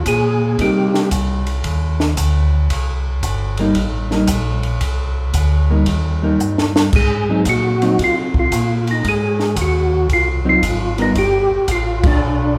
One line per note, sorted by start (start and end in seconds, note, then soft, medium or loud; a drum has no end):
0.06 0.57 A#2 medium
0.06 0.61 G#4 medium
0.06 kick soft
0.06 hi-hat pedal soft
0.06 ride medium
0.59 1.10 C3 medium
0.59 1.41 G3 medium
0.59 1.41 A#3 medium
0.59 1.41 D#4 medium
0.59 1.09 G4 medium
0.59 kick soft
0.59 ride medium
0.94 snare soft
1.11 1.63 C2 medium
1.11 kick soft
1.11 hi-hat pedal medium
1.11 ride medium
1.47 ride soft
1.64 2.16 D#2 medium
1.64 kick soft
1.64 ride medium
2.00 snare medium
2.17 2.69 D2 medium
2.17 kick soft
2.17 hi-hat pedal medium
2.17 ride medium
2.70 3.21 C2 medium
2.70 kick soft
2.70 ride medium
3.23 3.74 G1 medium
3.23 kick soft
3.23 hi-hat pedal soft
3.23 ride medium
3.57 3.74 G3 medium
3.57 3.75 A#3 medium
3.57 3.75 D#4 medium
3.57 ride soft
3.75 4.26 A1 medium
3.75 kick soft
3.75 ride medium
4.11 4.27 G3 medium
4.11 4.27 A#3 medium
4.11 4.28 D#4 medium
4.11 snare soft
4.27 4.80 A#1 medium
4.27 kick soft
4.27 hi-hat pedal medium
4.27 ride medium
4.63 ride soft
4.81 5.32 C2 medium
4.81 kick soft
4.81 ride medium
5.33 5.85 D2 medium
5.33 kick soft
5.33 hi-hat pedal medium
5.33 ride medium
5.70 5.85 G3 medium
5.70 5.86 A#3 medium
5.70 5.86 D#4 medium
5.86 6.38 D#2 medium
5.86 kick soft
5.86 ride medium
6.22 6.89 G3 medium
6.22 6.90 A#3 medium
6.22 6.90 D#4 medium
6.39 6.91 G2 medium
6.39 hi-hat pedal medium
6.58 snare medium
6.76 snare medium
6.93 7.44 G#2 medium
6.93 7.43 G#4 loud
6.93 kick medium
6.93 crash medium
7.29 7.44 F#3 medium
7.29 7.45 C4 medium
7.29 7.45 D#4 medium
7.45 7.97 A#2 medium
7.45 kick soft
7.45 hi-hat pedal medium
7.45 ride medium
7.49 8.02 F#4 medium
7.82 7.97 F#3 medium
7.82 7.97 C4 medium
7.82 7.98 D#4 medium
7.82 ride soft
7.99 8.50 C3 medium
7.99 kick soft
7.99 ride medium
8.04 8.19 F4 medium
8.34 kick soft
8.39 8.91 F4 medium
8.52 9.03 A#2 medium
8.52 kick soft
8.52 hi-hat pedal medium
8.52 ride medium
8.87 9.07 D#4 medium
8.87 ride soft
9.04 9.55 G#2 medium
9.04 kick soft
9.04 ride medium
9.09 9.55 G#4 medium
9.40 snare soft
9.56 10.08 D#2 medium
9.56 kick soft
9.56 hi-hat pedal soft
9.56 ride medium
9.62 10.08 F#4 medium
10.09 10.60 C2 medium
10.09 kick soft
10.09 ride medium
10.13 10.28 F4 medium
10.45 10.61 F#3 medium
10.45 10.61 C4 medium
10.45 10.61 D#4 medium
10.49 10.96 F4 medium
10.63 11.14 G#1 medium
10.63 kick soft
10.63 hi-hat pedal medium
10.63 ride medium
10.98 11.14 G3 medium
10.98 11.14 B3 medium
10.98 11.16 D#4 medium
10.98 11.14 F4 medium
10.98 11.14 A#4 medium
10.98 ride soft
11.15 11.48 G1 medium
11.15 11.71 G4 medium
11.15 kick soft
11.15 ride medium
11.50 11.59 G1 soft
11.68 12.19 A1 medium
11.68 12.06 F4 medium
11.68 kick soft
11.68 hi-hat pedal medium
11.68 ride medium
12.04 12.58 D4 medium
12.04 kick medium
12.04 ride medium
12.20 12.58 B1 medium